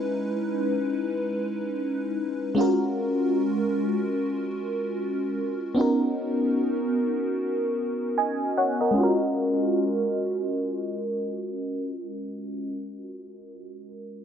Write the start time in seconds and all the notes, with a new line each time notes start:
Already playing: G#3 C#4 D#4 E4 B4
2.55 G#3 C#4 F4
2.59 F#4 A#4
5.75 B3 C#4 D#4
5.79 F#4 A#4
8.18 D#5 G#5
8.57 C#5 F#5
8.81 A#4 D#5
8.91 G#3 C#4
8.97 F4 F#4
9.03 A#4